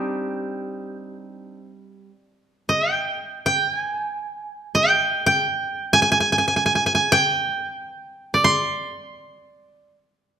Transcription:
0, 0, Header, 1, 2, 480
1, 0, Start_track
1, 0, Tempo, 500000
1, 9983, End_track
2, 0, Start_track
2, 0, Title_t, "Koto"
2, 0, Program_c, 0, 107
2, 0, Note_on_c, 0, 55, 36
2, 0, Note_on_c, 0, 60, 41
2, 0, Note_on_c, 0, 62, 49
2, 0, Note_on_c, 0, 63, 45
2, 0, Note_on_c, 0, 67, 68
2, 1210, Note_off_c, 0, 67, 0
2, 1473, Note_off_c, 0, 63, 0
2, 1507, Note_off_c, 0, 62, 0
2, 1621, Note_off_c, 0, 60, 0
2, 1998, Note_off_c, 0, 55, 0
2, 2582, Note_on_c, 0, 75, 61
2, 2812, Note_off_c, 0, 75, 0
2, 2812, Note_on_c, 0, 79, 61
2, 3321, Note_off_c, 0, 79, 0
2, 3321, Note_on_c, 0, 79, 71
2, 3609, Note_off_c, 0, 79, 0
2, 3609, Note_on_c, 0, 80, 71
2, 4558, Note_on_c, 0, 79, 69
2, 4616, Note_off_c, 0, 80, 0
2, 5050, Note_off_c, 0, 79, 0
2, 5054, Note_on_c, 0, 79, 72
2, 5694, Note_on_c, 0, 80, 83
2, 5752, Note_off_c, 0, 79, 0
2, 5775, Note_off_c, 0, 80, 0
2, 5779, Note_on_c, 0, 80, 57
2, 5868, Note_off_c, 0, 80, 0
2, 5872, Note_on_c, 0, 80, 64
2, 5952, Note_off_c, 0, 80, 0
2, 5955, Note_on_c, 0, 80, 50
2, 6066, Note_off_c, 0, 80, 0
2, 6070, Note_on_c, 0, 80, 53
2, 6122, Note_off_c, 0, 80, 0
2, 6126, Note_on_c, 0, 80, 50
2, 6214, Note_off_c, 0, 80, 0
2, 6218, Note_on_c, 0, 80, 51
2, 6296, Note_off_c, 0, 80, 0
2, 6300, Note_on_c, 0, 80, 46
2, 6387, Note_off_c, 0, 80, 0
2, 6391, Note_on_c, 0, 80, 58
2, 6479, Note_off_c, 0, 80, 0
2, 6483, Note_on_c, 0, 80, 45
2, 6583, Note_off_c, 0, 80, 0
2, 6587, Note_on_c, 0, 80, 59
2, 6666, Note_off_c, 0, 80, 0
2, 6670, Note_on_c, 0, 80, 51
2, 6835, Note_on_c, 0, 79, 85
2, 6892, Note_off_c, 0, 80, 0
2, 8006, Note_on_c, 0, 74, 52
2, 8106, Note_on_c, 0, 84, 80
2, 8127, Note_off_c, 0, 79, 0
2, 9542, Note_off_c, 0, 74, 0
2, 9983, Note_off_c, 0, 84, 0
2, 9983, End_track
0, 0, End_of_file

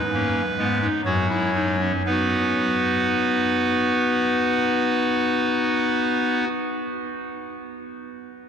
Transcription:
0, 0, Header, 1, 2, 480
1, 0, Start_track
1, 0, Key_signature, 5, "major"
1, 0, Tempo, 914634
1, 551, Tempo, 1011804
1, 1031, Time_signature, 3, 2, 24, 8
1, 1031, Tempo, 1063830
1, 3931, End_track
2, 0, Start_track
2, 0, Title_t, "Pipe organ"
2, 0, Program_c, 0, 19
2, 0, Note_on_c, 0, 71, 82
2, 69, Note_on_c, 0, 61, 84
2, 70, Note_on_c, 0, 58, 86
2, 216, Note_off_c, 0, 58, 0
2, 216, Note_off_c, 0, 61, 0
2, 307, Note_on_c, 0, 56, 85
2, 307, Note_on_c, 0, 59, 82
2, 309, Note_on_c, 0, 44, 90
2, 411, Note_off_c, 0, 59, 0
2, 428, Note_on_c, 0, 63, 79
2, 454, Note_off_c, 0, 71, 0
2, 459, Note_off_c, 0, 56, 0
2, 461, Note_off_c, 0, 44, 0
2, 535, Note_off_c, 0, 63, 0
2, 551, Note_on_c, 0, 54, 89
2, 551, Note_on_c, 0, 73, 83
2, 553, Note_on_c, 0, 42, 82
2, 554, Note_on_c, 0, 66, 90
2, 652, Note_off_c, 0, 66, 0
2, 667, Note_on_c, 0, 64, 72
2, 769, Note_off_c, 0, 64, 0
2, 786, Note_on_c, 0, 63, 82
2, 890, Note_off_c, 0, 63, 0
2, 906, Note_on_c, 0, 61, 81
2, 964, Note_off_c, 0, 54, 0
2, 964, Note_off_c, 0, 73, 0
2, 965, Note_off_c, 0, 42, 0
2, 1013, Note_off_c, 0, 61, 0
2, 1031, Note_on_c, 0, 59, 81
2, 1032, Note_on_c, 0, 63, 84
2, 1032, Note_on_c, 0, 71, 81
2, 1047, Note_on_c, 0, 66, 72
2, 3010, Note_off_c, 0, 59, 0
2, 3011, Note_off_c, 0, 63, 0
2, 3011, Note_off_c, 0, 71, 0
2, 3027, Note_off_c, 0, 66, 0
2, 3931, End_track
0, 0, End_of_file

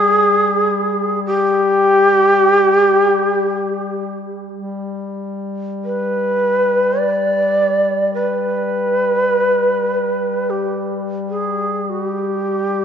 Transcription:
0, 0, Header, 1, 3, 480
1, 0, Start_track
1, 0, Key_signature, 1, "major"
1, 0, Tempo, 500000
1, 12334, End_track
2, 0, Start_track
2, 0, Title_t, "Shakuhachi"
2, 0, Program_c, 0, 77
2, 0, Note_on_c, 0, 68, 103
2, 1157, Note_off_c, 0, 68, 0
2, 1212, Note_on_c, 0, 67, 105
2, 4010, Note_off_c, 0, 67, 0
2, 5613, Note_on_c, 0, 71, 73
2, 6700, Note_on_c, 0, 74, 75
2, 6715, Note_off_c, 0, 71, 0
2, 7807, Note_off_c, 0, 74, 0
2, 7813, Note_on_c, 0, 71, 78
2, 10079, Note_on_c, 0, 67, 61
2, 10094, Note_off_c, 0, 71, 0
2, 10525, Note_off_c, 0, 67, 0
2, 10839, Note_on_c, 0, 68, 62
2, 11418, Note_on_c, 0, 66, 65
2, 11432, Note_off_c, 0, 68, 0
2, 11543, Note_off_c, 0, 66, 0
2, 11543, Note_on_c, 0, 67, 65
2, 12334, Note_off_c, 0, 67, 0
2, 12334, End_track
3, 0, Start_track
3, 0, Title_t, "Duduk"
3, 0, Program_c, 1, 69
3, 0, Note_on_c, 1, 55, 47
3, 4176, Note_off_c, 1, 55, 0
3, 4340, Note_on_c, 1, 55, 41
3, 12334, Note_off_c, 1, 55, 0
3, 12334, End_track
0, 0, End_of_file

